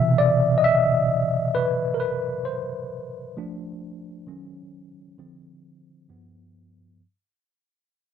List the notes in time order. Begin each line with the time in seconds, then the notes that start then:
Already playing: B2 C3 E3 E5
0.18 D5
0.58 D#5
0.64 E5
1.55 B4
1.94 A#4
2.00 B4
2.45 C5
3.37 F3 A3 D4
4.27 D#3 F#3 C#4
5.18 D3 F3 C4
6.09 G2 F3 B3